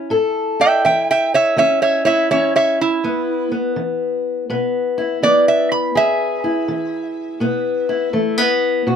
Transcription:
0.00 0.59 E4 medium
0.10 0.79 A2 medium
0.10 3.00 A4 medium
0.60 2.05 E4 medium
0.60 0.83 E5 medium
0.60 0.84 G5 medium
0.85 1.53 E3 medium
0.85 1.07 E5 medium
0.85 1.09 G5 medium
1.11 1.33 E5 medium
1.11 1.33 G5 medium
1.34 1.56 C#5 medium
1.34 1.58 E5 medium
1.56 2.25 E3 medium
1.56 2.30 C#4 medium
1.56 1.81 C#5 medium
1.56 1.81 E5 medium
1.82 2.04 C#5 medium
1.82 2.05 E5 medium
2.05 4.97 E4 medium
2.05 2.28 C#5 medium
2.05 2.30 E5 medium
2.31 2.99 E3 medium
2.31 3.01 C#4 medium
2.31 2.53 C#5 medium
2.31 2.54 E5 medium
2.56 2.78 C#5 medium
2.56 2.79 E5 medium
2.81 3.51 E4 medium
3.04 3.72 E2 medium
3.04 3.51 B3 medium
3.52 4.50 B3 medium
3.76 4.44 E3 medium
4.50 5.17 B2 medium
4.50 5.23 B3 medium
4.98 5.93 E4 medium
5.23 5.90 E3 medium
5.23 7.41 B3 medium
5.23 5.46 D5 medium
5.48 5.71 E5 medium
5.72 5.95 B5 medium
5.95 6.63 E2 medium
5.95 8.84 G#4 medium
5.95 8.11 E5 loud
6.44 7.88 E4 medium
6.68 7.36 E3 medium
7.40 8.09 B2 medium
7.40 8.13 B3 medium
7.89 8.84 E4 medium
8.13 8.82 E3 medium
8.13 8.38 A3 medium
8.38 8.87 B3 soft
8.87 8.96 B2 medium
8.87 8.96 F#4 medium

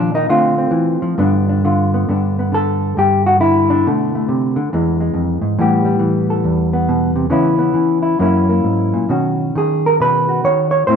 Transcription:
0.00 0.27 A#2 medium
0.00 0.13 D#3 medium
0.00 0.14 F3 medium
0.00 0.27 A#3 soft
0.00 0.15 D4 medium
0.14 0.29 D#3 medium
0.14 0.29 D#4 medium
0.29 0.71 D3 medium
0.29 1.16 A3 soft
0.29 0.57 C4 soft
0.29 1.64 F4 medium
0.58 1.16 C4 medium
0.71 1.00 E3 medium
1.02 1.17 F3 medium
1.18 2.07 G2 medium
1.18 1.63 D3 medium
1.18 1.93 B3 medium
1.18 1.48 D4 medium
1.49 2.09 D4 soft
1.65 2.08 D3 medium
1.65 2.08 F4 soft
1.94 2.08 B3 soft
2.09 2.96 G2 medium
2.09 2.51 D3 soft
2.09 2.39 B3 soft
2.09 3.69 D4 soft
2.39 3.88 B3 soft
2.52 3.39 D3 soft
2.52 2.98 A4 medium
2.97 3.84 G2 medium
2.97 3.26 G4 medium
3.26 3.40 F#4 medium
3.40 3.86 D3 medium
3.40 3.86 E4 medium
3.70 5.43 D4 medium
3.87 4.28 B2 medium
3.87 4.55 D3 soft
3.87 4.14 A3 soft
4.15 4.71 A3 soft
4.29 4.57 C3 medium
4.56 4.72 D3 medium
4.73 5.14 E2 medium
4.73 5.59 E3 soft
4.73 4.99 G#3 soft
5.00 5.56 G#3 soft
5.14 5.41 F2 medium
5.42 5.57 G#2 medium
5.59 6.44 A2 medium
5.59 5.99 E3 soft
5.59 5.84 G3 soft
5.59 6.72 B3 medium
5.59 6.30 G4 medium
5.85 7.31 G3 medium
5.99 7.28 E3 medium
6.30 7.30 A4 soft
6.44 7.31 E2 medium
6.73 7.30 B3 soft
6.89 7.15 B2 medium
7.16 7.29 C3 medium
7.30 7.74 C#3 medium
7.30 7.73 E3 medium
7.30 7.57 B3 medium
7.30 8.21 C#4 medium
7.30 8.01 E4 medium
7.59 8.17 B3 soft
7.74 8.17 E3 medium
8.03 8.19 E4 soft
8.19 8.64 F#2 medium
8.19 9.09 F#3 medium
8.19 8.48 A#3 medium
8.19 9.09 C#4 medium
8.19 9.12 E4 medium
8.49 9.09 A#3 soft
8.64 8.94 G#2 soft
8.94 9.09 A#2 soft
9.09 9.55 B2 medium
9.09 9.54 D#3 soft
9.09 10.85 C#4 soft
9.09 9.55 F#4 soft
9.55 10.43 D#3 medium
9.55 10.28 G#4 medium
9.86 9.95 A#4 medium
10.00 10.44 B2 medium
10.00 10.44 B4 medium
10.29 10.85 F#4 soft
10.44 10.85 D#3 medium
10.44 10.70 C#5 medium
10.71 10.87 C#5 medium
10.87 10.96 A2 medium
10.87 10.96 A3 soft
10.87 10.96 C4 soft
10.87 10.96 E4 soft
10.87 10.96 C5 medium

